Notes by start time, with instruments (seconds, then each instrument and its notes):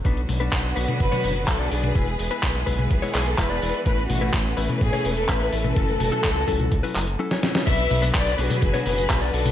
0.04 analog synth bass B1, clean electric guitar B2 F#3 B3 D4 B4, string section D3 F#3 B3 F#4 B4, kick, closed hi-hat
0.17 closed hi-hat
0.29 analog synth bass B1, open hi-hat, high tom
0.40 clean electric guitar B2 F#3 B3 D4 B4, closed hi-hat
0.53 analog synth bass B1, kick, clap, closed hi-hat
0.76 analog synth bass B1, clean electric guitar B2 F#3 B3 D4 B4, open hi-hat
0.88 closed hi-hat, high tom
1.00 analog synth bass F#1, violin section B4, kick, closed hi-hat
1.12 clean electric guitar B2 F#3 B3 D4 C#5, open hi-hat, high tom
1.24 analog synth bass F#1, open hi-hat
1.36 closed hi-hat
1.47 analog synth bass B1, clean electric guitar B2 F#3 B3 D4 B4, violin section A4, kick, clap, closed hi-hat
1.59 clean electric guitar B2 F#3 B3 D4 D5
1.71 analog synth bass B1, clean electric guitar F#3 B3 D4 D5, violin section G#4, open hi-hat
1.84 closed hi-hat, high tom
1.95 analog synth bass E1, string section E3 G#3 B3 G#4, clean electric guitar G#3 B3 E4 B4, kick, closed hi-hat
2.07 closed hi-hat
2.19 analog synth bass E1, open hi-hat
2.31 clean electric guitar G#3 B3 E4 B4, closed hi-hat
2.43 analog synth bass B1, kick, clap, closed hi-hat
2.66 analog synth bass B1, clean electric guitar G#3 B3 E4 B4, kick, open hi-hat
2.79 closed hi-hat, high tom
2.91 analog synth bass B1, kick, closed hi-hat
3.02 clean electric guitar G#3 B3 E4 C#5, open hi-hat
3.14 analog synth bass B1, violin section G#4, clap, open hi-hat
3.26 violin section A4, closed hi-hat
3.38 analog synth bass E1, clean electric guitar G#3 B3 E4 B4, violin section B4, kick, clap, closed hi-hat
3.50 clean electric guitar G#3 B3 E4 D5
3.62 analog synth bass E1, clean electric guitar G#3 B3 E4 D5, open hi-hat
3.74 closed hi-hat
3.85 analog synth bass A1, clean electric guitar A2 A3 C#4 E4 B4, string section A3 C#4 B4, violin section B4, kick, closed hi-hat
3.98 closed hi-hat
4.10 analog synth bass A1, violin section F#4, open hi-hat, high tom
4.21 clean electric guitar A2 A3 C#4 E4 B4, closed hi-hat
4.34 analog synth bass A1, kick, clap, closed hi-hat
4.57 analog synth bass A1, clean electric guitar A2 A3 C#4 E4 B4, open hi-hat
4.69 closed hi-hat, high tom
4.81 analog synth bass A2, violin section G#4, kick, closed hi-hat
4.93 clean electric guitar A2 A3 C#4 E4 C#5, open hi-hat, high tom
5.05 analog synth bass E1, open hi-hat
5.17 violin section A4, closed hi-hat
5.28 analog synth bass A1, clean electric guitar A2 A3 C#4 E4 B4, violin section B4, kick, clap, closed hi-hat
5.40 clean electric guitar A2 A3 C#4 E4 E5
5.52 analog synth bass A1, clean electric guitar A3 C#4 E4 E5, violin section A4, open hi-hat
5.64 closed hi-hat, high tom
5.76 analog synth bass F#1, clean electric guitar F#3 C#4 E4 A4, string section F#4, kick, closed hi-hat
5.88 closed hi-hat
6.00 analog synth bass F#1, open hi-hat, high tom
6.12 clean electric guitar F#3 C#4 E4 A4, closed hi-hat
6.24 analog synth bass C#2, kick, clap, closed hi-hat
6.36 closed hi-hat
6.48 analog synth bass C#2, clean electric guitar F#3 C#4 E4 A4, kick, open hi-hat
6.60 closed hi-hat, high tom
6.72 analog synth bass C#2, kick, closed hi-hat
6.83 clean electric guitar F#3 C#4 E4 B4, open hi-hat
6.95 analog synth bass F#1, clap, open hi-hat
7.07 closed hi-hat
7.19 clean electric guitar F#3 C#4 E4 A4
7.31 clean electric guitar F#3 C#4 E4 C#5, snare
7.43 clean electric guitar B2 F#3 C#4 E4 C#5, snare
7.55 snare
7.67 analog synth bass B1, clean electric guitar B2 F#3 B3 D4 B4, string section D3 F#3 B3 F#4 B4, violin section B4 E5, kick, closed hi-hat, crash, tambourine
7.79 closed hi-hat, tambourine
7.91 analog synth bass B1, open hi-hat, high tom
8.02 clean electric guitar B2 F#3 B3 D4 B4, closed hi-hat, tambourine
8.14 analog synth bass B1, violin section B4 D5, kick, clap, closed hi-hat, tambourine
8.26 tambourine
8.38 analog synth bass B1, clean electric guitar B2 F#3 B3 D4 B4, violin section G#4 B4, open hi-hat
8.50 closed hi-hat, high tom, tambourine
8.62 analog synth bass F#1, kick, closed hi-hat, tambourine
8.74 clean electric guitar B2 F#3 B3 D4 C#5, open hi-hat, high tom, tambourine
8.86 analog synth bass F#1, violin section G#4 B4, open hi-hat
8.98 closed hi-hat, tambourine
9.09 analog synth bass B1, clean electric guitar B2 F#3 B3 D4 B4, kick, clap, closed hi-hat, tambourine
9.21 clean electric guitar B2 F#3 B3 D4 D5, tambourine
9.33 analog synth bass B1, clean electric guitar F#3 B3 D4 D5, violin section F#4 A4, open hi-hat
9.46 closed hi-hat, high tom, tambourine